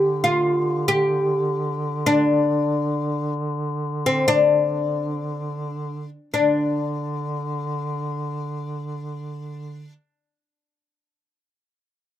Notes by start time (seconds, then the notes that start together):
Already playing: D3 G4
0.24 F4
0.88 G4
2.06 D4
4.06 C4
4.28 D4
6.33 D3 D4